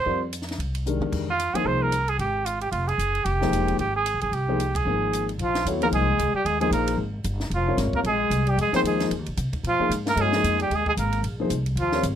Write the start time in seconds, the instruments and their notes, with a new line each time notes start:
0.00 trumpet C5
0.05 upright bass F2, grand piano G3 C4 F4 A#4 D5
0.33 hi-hat pedal, ride
0.42 snare
0.48 snare, ride
0.58 upright bass C2, ride
0.75 ride
0.86 grand piano D#3 G#3 D4 G4 A#4, hi-hat pedal
1.00 upright bass D#2, mid tom
1.12 upright bass F2, kick, crash
1.30 trumpet F4
1.40 hi-hat pedal, ride
1.54 upright bass D#2, grand piano F3 A#3 D#4 G#4 C5, trumpet G#4, ride
1.65 upright bass C2, trumpet C5
1.83 trumpet A#4
1.92 hi-hat pedal, ride
2.08 trumpet G#4, ride
2.19 upright bass G#1, trumpet G4, ride
2.45 trumpet F4, hi-hat pedal, ride
2.61 trumpet G4, ride
2.71 upright bass F1, trumpet F4, ride
2.88 trumpet G#4, ride
2.98 upright bass F#1, hi-hat pedal, ride
3.15 ride
3.25 upright bass F1, trumpet G4, ride
3.41 grand piano F3 G#3 A#3 D#4 C5, snare
3.51 upright bass E1, hi-hat pedal, ride
3.68 ride
3.79 upright bass G#1, trumpet G4, ride
3.96 trumpet G#4
4.06 hi-hat pedal, ride
4.14 upright bass C2
4.21 upright bass G1, trumpet G#4, ride
4.31 upright bass C2, trumpet G4, ride
4.48 grand piano F3 A#3 D#4 G#4 C5
4.60 hi-hat pedal, ride
4.75 trumpet G#4, kick, ride
4.85 upright bass G#1, grand piano F3 A#3 D#4 G#4 C5
5.13 hi-hat pedal, ride
5.29 ride
5.38 upright bass A#1, trombone F3, trumpet F4, ride
5.55 snare, ride
5.65 upright bass D#2, grand piano F#3 B3 E4 A4 C#5, hi-hat pedal, ride
5.81 grand piano F3 A#3 D#4 G#4 C5, trombone A#3, trumpet A#4, ride
5.92 upright bass C2, trombone G#3, trumpet G#4, ride
6.18 upright bass C#2, hi-hat pedal, ride
6.33 trombone G3, trumpet G4, muted upright bass stroke
6.45 upright bass D#2, trombone G#3, trumpet G#4, ride
6.60 grand piano F3 A#3 D#4 G#4 C5, trombone G#3, trumpet G#4, ride
6.71 upright bass A#1, trombone A#3, trumpet A#4, hi-hat pedal, ride
6.88 ride
6.97 upright bass G#1
7.24 upright bass G1, hi-hat pedal, ride
7.40 snare
7.50 upright bass F1, ride
7.54 trombone F3, trumpet F4
7.67 grand piano C3 G3 F4 A#4 C#5
7.77 upright bass G#1, snare, hi-hat pedal, ride
7.93 trombone A#3, trumpet A#4, muted upright bass stroke, kick
8.03 upright bass A#1, trombone G#3, trumpet G#4, ride
8.30 upright bass C2, hi-hat pedal, ride
8.47 trombone G3, trumpet G4, ride
8.57 upright bass F2, trombone G#3, ride
8.61 trumpet G#4
8.72 grand piano F3 A#3 D#4 G#4 C5, trombone C4, muted upright bass stroke, snare, ride
8.76 trumpet C5
8.83 upright bass D#2, trombone G#3, hi-hat pedal, ride
8.87 trumpet G#4
9.00 snare, ride
9.11 upright bass F2, ride
9.19 upright bass D#2
9.26 upright bass A#1, ride
9.37 upright bass C3, hi-hat pedal, ride
9.52 muted upright bass stroke, kick, ride
9.63 upright bass A#2, trombone F3, ride
9.69 trumpet F4
9.79 grand piano F3 A#3 D#4 G#4 C5, muted upright bass stroke
9.89 upright bass G#2, hi-hat pedal, ride
10.06 trombone A#3, trumpet A#4, snare, ride
10.16 upright bass G2, grand piano F#3 B3 E4 A4 C#5, trombone G#3, ride
10.21 trumpet G#4
10.33 grand piano F3 A#3 D#4 G#4 C5, snare
10.44 upright bass F2, hi-hat pedal, ride
10.60 trombone G3, trumpet G4, ride
10.70 upright bass D#2, trombone G#3, ride
10.75 trumpet G#4
10.86 trombone G#3, trumpet G#4, kick
10.97 upright bass G#1, trombone A#3, trumpet A#4, hi-hat pedal, ride
11.13 ride
11.23 upright bass A#1, ride
11.40 grand piano F3 A#3 D#4 G#4 C5
11.50 upright bass C2, hi-hat pedal, ride
11.66 ride
11.76 upright bass D#2, trombone F3, ride
11.80 trumpet F4
11.92 grand piano G3 C4 F4 A#4 C#5, snare
12.03 upright bass G#1, hi-hat pedal, ride